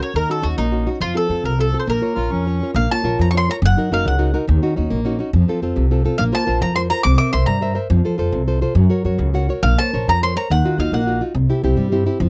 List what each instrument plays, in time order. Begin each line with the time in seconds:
0.00 nylon-string guitar C#4 F#4 A#4, mandolin C#5
0.14 upright bass D#2, nylon-string guitar D#3, mandolin A#4
0.29 nylon-string guitar C#4 D#4 F#4, mandolin A4
0.42 upright bass D#2, nylon-string guitar C#4 D#4 F#4, mandolin F#4
0.58 upright bass A#1, nylon-string guitar A#3, mandolin D#4
0.72 nylon-string guitar C#4 D#4 F#4
0.86 nylon-string guitar C#4 D#4 F#4
1.00 upright bass F2, nylon-string guitar F3, mandolin F4
1.14 nylon-string guitar C4 F4 A4, mandolin A4
1.29 upright bass F2, nylon-string guitar C4 F4 A4
1.44 upright bass C2, nylon-string guitar C3, mandolin A#4
1.58 nylon-string guitar C4 F4 A4, mandolin A4
1.73 nylon-string guitar C4 F4 A4
1.79 mandolin C5
1.87 upright bass A#1, nylon-string guitar A#3, mandolin A#4
2.02 nylon-string guitar F4 A#4 C#5
2.15 upright bass A#1, accordion F4, nylon-string guitar A#4 C#5
2.30 upright bass F2, nylon-string guitar F3, accordion C#4
2.46 nylon-string guitar F4 A#4 C#5
2.63 nylon-string guitar F4 A#4 C#5
2.74 upright bass A#1, nylon-string guitar A#3, mandolin F5
2.91 nylon-string guitar F4 A#4 C#5, mandolin A5
3.04 upright bass A#1, nylon-string guitar F4 A#4 C#5
3.19 upright bass F2, nylon-string guitar F3, mandolin A#5
3.31 nylon-string guitar F4 A#4, mandolin C#6
3.35 nylon-string guitar C#5, mandolin C6
3.49 nylon-string guitar F4 A#4 C#5, mandolin A#5
3.62 upright bass F#1, nylon-string guitar F#3, mandolin F#5
3.77 nylon-string guitar D#4 F#4 A#4
3.92 upright bass F#1, nylon-string guitar D#4 F#4 A#4, mandolin F5
4.05 upright bass C#2, nylon-string guitar C#3, mandolin F#5
4.19 nylon-string guitar D#4 F#4 A#4
4.34 nylon-string guitar D#4 F#4 A#4
4.48 upright bass D#2, nylon-string guitar D#3
4.62 nylon-string guitar C#4 D#4 F#4
4.76 upright bass D#2, nylon-string guitar C#4 D#4 F#4
4.90 upright bass A#1, nylon-string guitar A#3
5.05 nylon-string guitar C#4 D#4 F#4
5.19 nylon-string guitar C#4 D#4 F#4
5.33 upright bass F2, nylon-string guitar F3
5.48 nylon-string guitar C4 F4 A4
5.62 upright bass F2, nylon-string guitar C4 F4 A4
5.76 upright bass C2, nylon-string guitar C3
5.91 nylon-string guitar C4 F4 A4
6.05 nylon-string guitar C4 F4 A4
6.18 upright bass A#1, nylon-string guitar A#3, mandolin F5
6.32 nylon-string guitar F4 A#4 C5, mandolin A5
6.47 upright bass A#1, nylon-string guitar F4 A#4 C5
6.61 upright bass F2, nylon-string guitar F3, mandolin A#5
6.76 nylon-string guitar F4 A#4 C5, mandolin C6
6.90 nylon-string guitar F4 A#4 C5, mandolin A#5
7.03 upright bass C2, nylon-string guitar C4, mandolin D6
7.18 nylon-string guitar A#4 C5 E5, mandolin D6
7.33 upright bass C2, nylon-string guitar A#4 C5 E5, mandolin C6
7.46 upright bass G2, nylon-string guitar G3, mandolin A#5
7.61 nylon-string guitar A#4 C5 E5
7.75 nylon-string guitar A#4 C5 E5
7.90 upright bass F2, nylon-string guitar F3
8.05 nylon-string guitar F4 A4 C5
8.18 upright bass F2, nylon-string guitar F4 A4 C5
8.32 upright bass C2, nylon-string guitar C3
8.47 nylon-string guitar F4 A4 C5
8.61 nylon-string guitar F4 A4 C5
8.75 upright bass F#2, nylon-string guitar F#3
8.90 nylon-string guitar F#4 A#4 C#5
9.05 upright bass F#2, nylon-string guitar F#4 A#4 C#5
9.18 upright bass C#2, nylon-string guitar C#3
9.34 nylon-string guitar F#4 A#4 C#5 F#5
9.49 nylon-string guitar F#4 A#4 C#5
9.63 upright bass A#1, nylon-string guitar A#3, mandolin F5
9.78 nylon-string guitar A#4 C5 C#5, mandolin A5
9.93 upright bass A#1, nylon-string guitar A#4 C5 C#5
10.08 upright bass F2, nylon-string guitar F3, mandolin A#5
10.23 nylon-string guitar A#4 C5 C#5, mandolin C6
10.36 nylon-string guitar A#4 C5 C#5, mandolin A#5
10.50 upright bass D#2, nylon-string guitar D#3, mandolin F#5
10.65 nylon-string guitar D#4 F4 F#4
10.78 upright bass D#2, nylon-string guitar D#4 F4 F#4, mandolin F5
10.92 upright bass A#1, nylon-string guitar A#3, mandolin F#5
11.06 nylon-string guitar D#4 F4 F#4
11.21 nylon-string guitar D#4 F4 F#4
11.35 upright bass C2, nylon-string guitar C3
11.49 nylon-string guitar C4 E4 G4
11.64 upright bass C2, nylon-string guitar C4 E4 G4
11.76 upright bass G2, nylon-string guitar G3
11.92 nylon-string guitar C4 E4 G4
12.06 nylon-string guitar C4 E4 G4
12.20 upright bass F2, nylon-string guitar F3